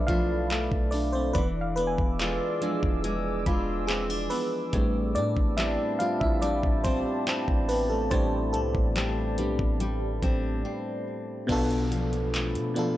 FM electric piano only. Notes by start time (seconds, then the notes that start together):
Already playing: F3 A3 D4 E4 F4 D5 E5 F5
0.07 F4 F5
0.91 D4 D5
1.13 C4 C5
1.33 B3 B4
1.76 B3 B4
2.61 F3 G#3 D4
3.87 G#3 G#4
4.30 B3 B4
4.74 G3 A3 C4 D4
5.15 D4 D5
5.57 E4 E5
5.99 F4 F5
6.20 E4 E5
6.42 D4 D5
6.84 C4 C5
7.69 B3 B4
7.90 A3 A4
8.11 G3 C4 D4 B4 C5
8.53 A3 A4
9.38 G3 B3 C4 D4
11.47 B2 B3 D4 F4
11.52 A4
12.74 B2 B3 D4 F4
12.79 A4